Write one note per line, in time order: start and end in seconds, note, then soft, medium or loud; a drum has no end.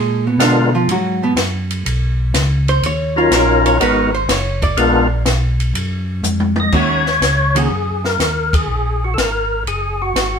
0.00 0.37 A#2 medium
0.00 0.25 G#3 medium
0.00 0.25 G#4 medium
0.27 0.40 B2 soft
0.27 0.40 B3 soft
0.38 0.86 B2 medium
0.38 0.70 G#3 medium
0.38 0.70 B3 medium
0.38 0.70 D4 medium
0.38 0.70 F4 medium
0.38 0.70 A#4 medium
0.38 snare medium
0.38 hi-hat pedal medium
0.38 ride medium
0.43 0.74 D3 medium
0.43 0.74 D4 medium
0.75 0.89 F3 medium
0.75 0.89 F4 medium
0.87 1.35 G#2 medium
0.87 ride medium
0.91 1.22 F#3 medium
0.91 1.22 F#4 medium
1.23 1.32 B2 medium
1.23 1.32 B3 medium
1.36 1.84 F#2 medium
1.36 snare medium
1.36 hi-hat pedal medium
1.36 ride medium
1.71 ride medium
1.85 2.33 B1 medium
1.85 ride medium
2.33 2.81 C#2 loud
2.33 snare medium
2.33 hi-hat pedal medium
2.33 ride medium
2.68 2.83 C5 medium
2.68 ride soft
2.82 3.30 D#2 medium
2.82 3.17 C#5 loud
2.82 ride medium
3.16 3.77 F#3 medium
3.16 3.77 C#4 medium
3.16 3.77 D#4 medium
3.16 3.78 F4 medium
3.16 3.32 F4 medium
3.16 3.78 A#4 medium
3.31 3.78 A#1 medium
3.31 snare medium
3.31 hi-hat pedal medium
3.31 ride medium
3.35 3.66 A#4 medium
3.66 3.80 C#5 loud
3.66 ride soft
3.79 4.27 G#1 medium
3.79 4.10 G#3 medium
3.79 4.10 B3 medium
3.79 4.11 D#4 medium
3.79 4.11 F#4 medium
3.79 4.11 A#4 medium
3.79 4.14 B4 medium
3.79 ride medium
4.15 4.29 C5 loud
4.28 4.76 F#1 loud
4.28 4.63 C#5 medium
4.28 snare medium
4.28 hi-hat pedal medium
4.28 ride medium
4.62 5.23 D5 medium
4.62 kick medium
4.62 ride soft
4.76 5.24 A#1 medium
4.76 5.08 G#3 medium
4.76 5.08 B3 medium
4.76 5.08 D4 medium
4.76 5.08 F4 medium
4.76 5.08 A#4 medium
4.76 ride medium
5.25 5.73 B1 medium
5.25 snare medium
5.25 hi-hat pedal medium
5.25 ride medium
5.60 ride soft
5.74 6.22 F#2 medium
5.74 ride medium
6.23 6.71 F2 medium
6.23 hi-hat pedal medium
6.23 mid tom medium
6.40 mid tom medium
6.56 mid tom medium
6.60 6.74 D#5 medium
6.72 7.20 D#2 medium
6.72 7.03 D#3 medium
6.72 7.03 A#3 medium
6.72 7.03 C#4 medium
6.72 7.04 F#4 medium
6.72 7.59 C#5 loud
6.72 kick medium
6.72 crash medium
7.06 snare soft
7.21 7.69 C#2 medium
7.21 snare medium
7.21 hi-hat pedal medium
7.21 ride medium
7.55 7.69 D#3 medium
7.55 7.69 A#3 medium
7.55 7.69 C#4 medium
7.55 7.70 F#4 medium
7.55 8.06 G#4 loud
7.55 ride medium
7.70 8.17 F#2 medium
8.05 8.55 A#4 medium
8.05 snare soft
8.18 8.66 D#2 medium
8.18 snare medium
8.18 hi-hat pedal soft
8.18 ride medium
8.53 9.04 G#4 medium
8.53 kick medium
8.53 ride medium
8.68 9.15 A#1 medium
9.04 9.14 F#4 medium
9.14 9.64 G#1 medium
9.14 9.18 A4 medium
9.14 snare medium
9.18 9.63 A#4 medium
9.18 hi-hat pedal soft
9.18 ride medium
9.65 10.13 F#1 medium
9.65 10.02 G#4 medium
9.65 ride soft
10.02 10.39 F#4 medium
10.14 10.39 G#1 medium
10.14 snare medium
10.14 hi-hat pedal soft
10.14 ride medium